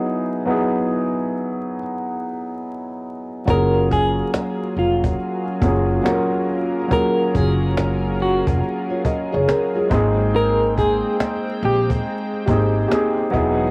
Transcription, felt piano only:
0.00 0.35 F#3 medium
0.00 0.36 B3 medium
0.00 0.36 D#4 medium
0.00 0.37 E4 medium
0.00 0.37 G#4 loud
0.46 1.76 F#3 medium
0.46 1.77 B3 medium
0.46 1.77 D#4 medium
0.46 1.78 E4 medium
0.50 1.79 G#4 medium
3.45 4.76 F#3 medium
3.45 4.77 A#3 medium
3.45 4.77 C#4 medium
3.45 4.78 F4 medium
3.50 4.79 G#4 medium
5.61 5.97 F#3 medium
5.61 5.98 A#3 medium
5.61 5.98 C#4 medium
5.61 5.99 F4 medium
5.65 5.99 G#4 medium
6.02 6.75 F#3 medium
6.02 6.76 A#3 medium
6.02 6.76 C#4 medium
6.02 6.77 F4 medium
6.07 6.77 A#4 medium
6.88 8.19 F#3 medium
6.88 8.20 A#3 medium
6.88 8.20 C#4 medium
6.88 8.21 F4 medium
6.93 8.21 G#4 medium
9.05 9.32 D#5 medium
9.34 9.47 C#5 medium
9.48 9.74 A#4 medium
9.77 9.92 G#4 medium
9.89 11.30 G#3 loud
9.89 11.30 A#3 medium
9.89 11.31 C4 medium
9.89 11.32 D#4 medium
9.94 11.32 G#4 loud
12.46 12.83 A#3 medium
12.46 12.84 C4 medium
12.46 12.84 D#4 medium
12.46 12.83 G4 medium
12.51 12.85 G#4 medium
12.88 13.33 A#3 medium
12.88 13.33 C4 medium
12.88 13.31 D#4 medium
12.88 13.32 G4 medium
12.93 13.34 G#4 loud
13.31 13.71 F#3 loud
13.31 13.71 B3 medium
13.31 13.71 D#4 loud
13.31 13.71 E4 loud
13.35 13.71 G#4 loud

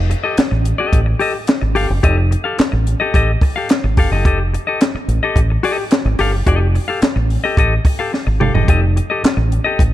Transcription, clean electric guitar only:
0.10 muted clean electric guitar stroke soft
0.24 0.37 G4 medium
0.24 0.37 A4 medium
0.24 0.36 D#5 medium
0.51 muted clean electric guitar stroke soft
0.78 1.00 G4 medium
0.78 1.00 A4 medium
0.78 0.99 D#5 medium
1.06 muted clean electric guitar stroke medium
1.19 1.36 G4 medium
1.19 1.34 A4 medium
1.19 1.33 D#5 medium
1.34 muted clean electric guitar stroke soft
1.61 muted clean electric guitar stroke soft
1.75 1.92 G4 medium
1.75 1.89 A4 medium
1.75 1.89 F5 medium
1.89 muted clean electric guitar stroke soft
2.03 2.19 G4 medium
2.03 2.18 A4 medium
2.03 2.16 D#5 medium
2.17 muted clean electric guitar stroke medium
2.31 muted clean electric guitar stroke soft
2.44 2.57 G4 soft
2.44 2.58 A4 medium
2.44 2.57 F5 medium
2.58 muted clean electric guitar stroke soft
2.72 muted clean electric guitar stroke soft
3.00 3.13 G4 medium
3.00 3.14 A4 medium
3.00 3.14 D#5 medium
3.14 3.30 G4 medium
3.14 3.31 A4 medium
3.14 3.31 D#5 loud
3.42 muted clean electric guitar stroke soft
3.56 3.69 G4 soft
3.56 3.69 A4 soft
3.56 3.68 F5 medium
3.70 muted clean electric guitar stroke soft
3.84 muted clean electric guitar stroke soft
3.98 4.10 G4 medium
3.98 4.11 A4 medium
3.98 4.11 F5 medium
4.12 4.24 G4 soft
4.12 4.24 A4 medium
4.12 4.24 D#5 medium
4.25 4.41 G4 medium
4.25 4.39 A4 medium
4.25 4.38 D#5 medium
4.40 muted clean electric guitar stroke medium
4.54 muted clean electric guitar stroke soft
4.67 4.80 G4 soft
4.67 4.80 A4 medium
4.67 4.79 D#5 medium
4.81 muted clean electric guitar stroke soft
4.96 muted clean electric guitar stroke medium
5.23 5.39 G4 medium
5.23 5.39 A4 medium
5.23 5.38 D#5 medium
5.50 muted clean electric guitar stroke soft
5.63 5.83 G4 loud
5.63 5.78 A4 medium
5.63 5.77 D#5 medium
5.78 muted clean electric guitar stroke medium
6.06 muted clean electric guitar stroke soft
6.19 6.35 G4 medium
6.19 6.33 A4 loud
6.19 6.33 F5 medium
6.33 muted clean electric guitar stroke soft
6.47 6.67 G4 medium
6.47 6.60 A4 medium
6.47 6.59 D#5 loud
6.60 muted clean electric guitar stroke soft
6.75 muted clean electric guitar stroke soft
6.88 7.00 G4 medium
6.88 7.01 A4 medium
6.88 7.00 F5 medium
7.02 muted clean electric guitar stroke soft
7.16 muted clean electric guitar stroke soft
7.44 7.56 G4 medium
7.44 7.57 A4 medium
7.44 7.58 D#5 medium
7.57 7.73 G4 medium
7.57 7.74 A4 medium
7.57 7.74 D#5 medium
7.85 muted clean electric guitar stroke medium
7.99 8.12 G4 soft
7.99 8.12 A4 medium
7.99 8.11 F5 medium
8.13 muted clean electric guitar stroke soft
8.27 muted clean electric guitar stroke medium
8.40 8.53 G4 medium
8.40 8.53 A4 medium
8.40 8.54 F5 medium
8.54 8.67 G4 soft
8.54 8.67 A4 soft
8.54 8.67 D#5 medium
8.68 8.84 G4 medium
8.68 8.82 A4 medium
8.68 8.81 D#5 medium
8.82 muted clean electric guitar stroke soft
8.96 muted clean electric guitar stroke soft
9.10 9.23 G4 soft
9.10 9.23 A4 medium
9.10 9.22 D#5 medium
9.24 muted clean electric guitar stroke soft
9.37 muted clean electric guitar stroke medium
9.64 9.82 G4 medium
9.64 9.81 A4 medium
9.64 9.81 D#5 medium

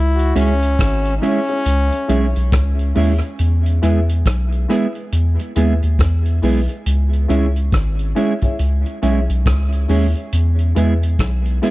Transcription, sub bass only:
0.00 0.33 C#2 loud
0.36 0.77 C#2 medium
0.79 1.20 G#1 medium
1.66 1.91 C#2 medium
2.09 2.34 B1 medium
2.36 2.52 B1 medium
2.52 2.93 C#2 medium
2.96 3.21 D#2 loud
3.39 3.80 E2 loud
3.83 4.24 E2 medium
4.26 4.67 B1 medium
5.12 5.38 E2 medium
5.56 5.81 D#2 loud
5.83 5.99 D#2 medium
5.99 6.40 E2 loud
6.43 6.68 B1 loud
6.86 7.27 C#2 loud
7.30 7.71 C#2 medium
7.73 8.14 G#1 medium
8.59 8.85 C#2 medium
9.03 9.28 B1 medium
9.30 9.45 B1 medium
9.46 9.87 C#2 medium
9.89 10.15 D#2 loud
10.33 10.74 E2 loud
10.76 11.17 E2 medium
11.19 11.60 B1 loud

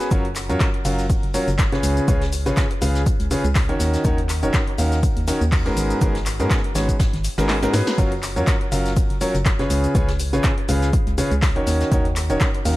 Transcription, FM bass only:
0.11 0.51 F#1 medium
0.49 0.57 F#2 loud
0.85 1.16 F#1 loud
1.23 1.38 F#1 medium
1.48 1.77 F#1 medium
1.83 2.00 C#2 medium
2.08 2.48 C#2 loud
2.46 2.53 G#1 loud
2.82 3.12 C#2 loud
3.20 3.35 C#2 medium
3.44 3.74 C#2 medium
3.80 3.97 D#2 medium
4.05 4.44 D#2 loud
4.43 4.50 D#1 loud
4.78 5.09 D#2 loud
5.17 5.32 D#2 medium
5.41 5.71 D#2 medium
5.77 5.94 G#1 medium
6.01 6.41 G#1 medium
6.40 6.47 G#2 loud
6.75 7.06 G#1 loud
7.13 7.29 G#1 medium
7.38 7.68 G#1 loud
7.74 7.82 G#2 medium
7.98 8.38 F#1 loud
8.36 8.44 F#2 loud
8.72 9.03 F#1 loud
9.10 9.25 F#1 medium
9.35 9.64 F#1 medium
9.70 9.87 C#2 medium
9.95 10.35 C#2 loud
10.33 10.40 G#1 loud
10.69 10.99 C#2 loud
11.07 11.22 C#2 medium
11.31 11.61 C#2 medium
11.67 11.84 D#2 medium
11.92 12.31 D#2 medium
12.30 12.37 D#1 loud
12.65 12.77 D#2 loud

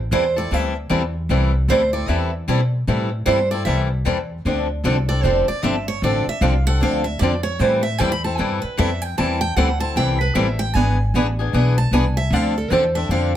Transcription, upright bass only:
0.00 0.10 A1 medium
0.11 0.50 E2 medium
0.51 0.89 D2 medium
0.90 1.28 E2 medium
1.29 1.68 C2 medium
1.68 2.07 D2 medium
2.08 2.47 E2 medium
2.48 2.86 B2 medium
2.87 3.26 A2 medium
3.26 3.65 G2 medium
3.66 4.04 C2 medium
4.05 4.44 E2 medium
4.45 4.83 D2 medium
4.84 5.22 C2 medium
5.23 5.46 F1 medium
5.49 muted upright bass stroke soft
5.63 6.01 G1 medium
6.02 6.25 A1 medium
6.26 muted upright bass stroke soft
6.41 6.80 C2 loud
6.81 7.20 D2 medium
7.20 7.59 F2 medium
7.59 7.98 A2 loud
8.00 8.38 E2 loud
8.39 8.62 G2 medium
8.63 muted upright bass stroke soft
8.78 9.17 F2 medium
9.18 9.56 E2 medium
9.56 9.95 D2 medium
9.96 10.34 C2 medium
10.35 10.73 A1 medium
10.75 11.13 G#1 medium
11.14 11.52 A1 loud
11.53 11.90 B1 medium
11.91 12.30 C2 medium
12.30 12.69 D2 loud
12.70 13.08 E2 loud
13.09 13.36 F2 medium

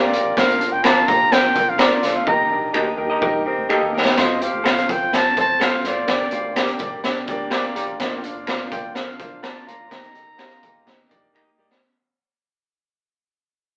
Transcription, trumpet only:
0.00 0.35 D5 medium
0.38 0.74 F5 loud
0.72 0.86 G5 loud
0.84 1.09 A5 loud
1.08 1.34 A#5 loud
1.33 1.71 G5 loud
1.69 1.83 F5 loud
1.81 2.18 D5 medium
2.17 2.27 F5 medium
2.28 2.72 A#5 loud
4.19 4.44 D#5 medium
4.42 4.93 F5 loud
4.91 5.17 G5 loud
5.16 5.38 A5 loud
5.40 5.65 A5 loud
5.64 5.89 F5 loud
5.87 6.81 D5 medium
8.02 8.17 D#5 medium
8.18 8.25 G5 medium
8.24 8.72 F5 medium
8.72 8.97 G5 medium
8.95 9.46 F5 loud
9.45 9.70 A5 medium
9.68 11.35 A#5 loud

